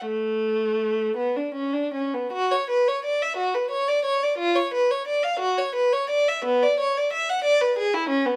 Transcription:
\new Staff \with { instrumentName = "Violin" } { \time 6/8 \key a \major \tempo 4. = 59 a4. b16 d'16 cis'16 d'16 cis'16 b16 | \key b \dorian fis'16 cis''16 b'16 cis''16 d''16 e''16 fis'16 b'16 cis''16 d''16 cis''16 d''16 | eis'16 cis''16 b'16 cis''16 d''16 eis''16 fis'16 cis''16 b'16 cis''16 d''16 e''16 | b16 d''16 cis''16 d''16 e''16 fis''16 d''16 b'16 gis'16 e'16 cis'16 b16 | }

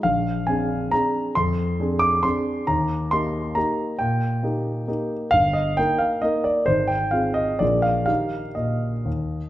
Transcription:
\new Staff \with { instrumentName = "Grand piano" } { \time 3/4 \key ees \major \tempo 4 = 134 << { f''4 aes''4 bes''4 | c'''4. d'''8 c'''4 | bes''4 c'''4 bes''4 | g''2~ g''8 r8 |
f''8 ees''8 g''8 f''8 ees''8 d''8 | c''8 g''8 f''8 ees''8 d''8 f''8 | f''4 ees''2 | } \\ { bes,,4 <c' d' aes'>4 <c' d' aes'>4 | f,4 <c' d' aes'>4 <c' d' aes'>4 | ees,4 <bes ees' g'>4 <bes ees' g'>4 | bes,4 <bes ees' g'>4 <bes ees' g'>4 |
g,,4 <bes ees' bes'>4 <bes ees' bes'>4 | aes,,4 <c' f' aes'>4 <bes,, bes f' aes'>4 | <ees ees' g'>4 bes,4 ees,4 | } >> }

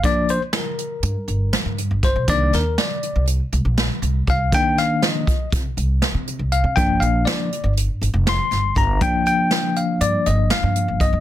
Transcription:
<<
  \new Staff \with { instrumentName = "Tine electric piano" } { \time 9/8 \key c \minor \tempo 4. = 80 d''8 c''8 bes'2~ bes'8 r8 c''8 | d''8 bes'8 d''4 r2 f''8 | g''8 f''8 ees''4 r2 f''8 | g''8 f''8 d''4 r4 c'''4 bes''8 |
g''8 g''4 f''8 d''8 ees''8 f''4 ees''8 | }
  \new Staff \with { instrumentName = "Tine electric piano" } { \time 9/8 \key c \minor <f bes d'>8 r1 | <ees bes d'>8 r1 | <ees bes d'>4. r2. | <f bes d'>4. r2. |
<f bes d'>1~ <f bes d'>8 | }
  \new Staff \with { instrumentName = "Upright bass" } { \clef bass \time 9/8 \key c \minor r2 g,16 r16 g,,8 r16 g,8 g,,8 b,,16 | c,8 ees,8 r8. c,8 r16 c,16 bes,,8 r16 c,8 c,8 | r2 c16 r16 c,8 r16 c8 c,8 c16 | g,,8 bes,,8 r8. g,,8 r16 g,,16 f,,8 r16 g,,8 g,,8 |
r2 g,16 r16 g,,8 r16 g,8 g,,8 g,16 | }
  \new DrumStaff \with { instrumentName = "Drums" } \drummode { \time 9/8 <hh bd>8 hh8 <hh sn>8 hh8 hh8 hh8 <hh sn>8 hh8 <hh bd sn>8 | <hh bd>8 <hh sn>8 <hh sn>8 hh8 hh8 hh8 <hh sn>8 hh8 <hh bd>8 | <hh bd>8 <hh sn>8 <hh sn>8 <hh bd>8 <hh bd>8 hh8 <hh sn>8 hh8 hh8 | <hh bd>8 hh8 <hh sn>8 hh8 hh8 hh8 <hh sn>8 <hh sn>8 <hh bd>8 |
<hh bd>8 hh8 <hh sn>8 hh8 hh8 hh8 <hh sn>8 hh8 <hh bd>8 | }
>>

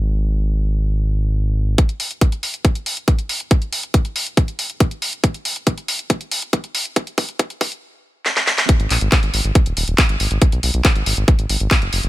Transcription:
<<
  \new Staff \with { instrumentName = "Analog synth bass" } { \clef bass \time 4/4 \key gis \minor \tempo 4 = 139 gis,,1 | r1 | r1 | r1 |
r1 | r16 gis,,16 ais,,16 gis,,16 r16 gis,,16 gis,,16 gis,,16 r16 dis,,16 dis,,16 dis,,16 r16 gis,,16 gis,,16 gis,,16 | r16 b,,16 b,,16 b,,16 r16 gis,,16 gis,,16 gis,,16 r16 gis,,16 gis,,16 gis,,16 r16 fis,,16 fis,,16 fis,,16 | }
  \new DrumStaff \with { instrumentName = "Drums" } \drummode { \time 4/4 r4 r4 r4 r4 | <hh bd>16 hh16 hho16 hh16 <hh bd>16 hh16 hho16 hh16 <hh bd>16 hh16 hho16 hh16 <hh bd>16 hh16 hho16 hh16 | <hh bd>16 hh16 hho16 hh16 <hh bd>16 hh16 hho16 hh16 <hh bd>16 hh16 hho16 hh16 <hh bd>16 hh16 hho16 hh16 | <hh bd>16 hh16 hho16 hh16 <hh bd>16 hh16 hho16 hh16 <hh bd>16 hh16 hho16 hh16 <hh bd>16 hh16 hho16 hh16 |
<hh bd>16 hh16 <hho bd>16 hh16 <hh bd>16 hh16 <hho bd>16 hh16 r4 sn16 sn16 sn16 sn16 | <hh bd>16 hh16 <hc hho>16 hh16 <hc hh bd>16 hh16 hho16 hh16 <hh bd>16 hh16 hho16 hh16 <hc hh bd>16 hh16 hho16 hh16 | <hh bd>16 hh16 hho16 hh16 <hc hh bd>16 hh16 hho16 hh16 <hh bd>16 hh16 hho16 hh16 <hc hh bd>16 hh16 hho16 hh16 | }
>>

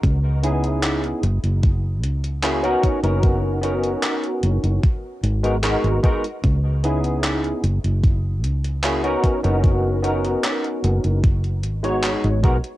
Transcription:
<<
  \new Staff \with { instrumentName = "Tine electric piano" } { \time 4/4 \key b \major \tempo 4 = 75 r8 <b cis' dis' e' gis'>4 r4. <ais cis' e' fis' gis'>16 <b cis' dis' fis' ais'>8 <b cis' dis' fis' ais'>16~ | <b cis' dis' fis' ais'>8 <b cis' dis' fis' ais'>4. r8. <gis b dis' fis' ais'>16 <gis b dis' fis' ais'>8 <gis b dis' fis' ais'>16 r16 | r8 <b cis' dis' e' gis'>4 r4. <ais cis' e' fis' gis'>16 <b cis' dis' fis' ais'>8 <b cis' dis' fis' ais'>16~ | <b cis' dis' fis' ais'>8 <b cis' dis' fis' ais'>4. r8. <gis b dis' fis' cis''>8. <gis b dis' fis' ais'>16 r16 | }
  \new Staff \with { instrumentName = "Fingered electric bass" } { \clef bass \time 4/4 \key b \major cis,4~ cis,16 r16 fis,,16 fis,,8. cis,4 r16 fis,,16~ | fis,,4 r8 fis,,16 fis,,16 r8 gis,,8. gis,,16 r8 | cis,4~ cis,16 r16 fis,,16 fis,,8. cis,4 r16 fis,,16~ | fis,,4 r8 fis,,16 fis,,8. gis,,8. gis,,16 b,,16 r16 | }
  \new DrumStaff \with { instrumentName = "Drums" } \drummode { \time 4/4 <hh bd>8 hh16 hh16 <hc hh>16 hh16 hh16 hh16 <hh bd>8 hh16 hh16 <hc hh>16 hh16 <hh bd>16 hh16 | <hh bd>8 hh16 hh16 <hc hh>16 hh16 hh16 hh16 <hh bd>8 hh16 hh16 <hc hh>16 hh16 <hh bd>16 hh16 | <hh bd>8 hh16 hh16 <hc hh>16 hh16 hh16 hh16 <hh bd>8 hh16 hh16 <hc hh>16 hh16 <hh bd>16 hh16 | <hh bd>8 hh16 hh16 <hc hh>16 hh16 hh16 hh16 <hh bd>16 hh16 hh16 hh16 <hc hh>16 hh16 <hh bd>16 hh16 | }
>>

